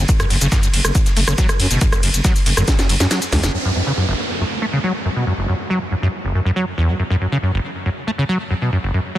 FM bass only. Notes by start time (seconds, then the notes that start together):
0.30 F#1
0.41 F#1
0.74 F#1
0.84 F#1
1.17 F#1
1.28 F#1
1.60 F#2
1.71 F#1
2.03 F#1
2.14 F#1
2.46 F#1
2.57 F#1
2.89 F#1
3.00 F#2
3.32 C#2
3.43 F#1